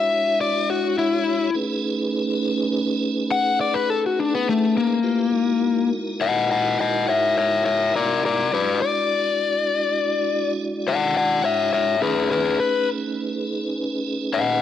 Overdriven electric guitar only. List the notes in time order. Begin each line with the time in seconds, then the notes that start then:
Already playing: E5
0.41 D5
0.70 F#4
0.98 E4
3.31 F#5
3.61 D5
3.74 B4
3.90 A4
4.06 F#4
4.19 D4
4.34 B3
4.49 A3
4.78 A#3
6.21 D#5 F#5
6.51 D#5 F#5
6.80 D#5 F#5
7.09 C#5 E5
7.37 C#5 E5
7.65 C#5 E5
7.95 A#4 D5
8.25 A#4 D5
8.53 B4 D5
8.82 D5
10.88 D5 F#5
11.17 D5 F#5
11.44 C#5 E5
11.73 C#5 E5
12.02 G#4 B4
12.31 G#4 B4
12.60 B4
14.34 D#5 F#5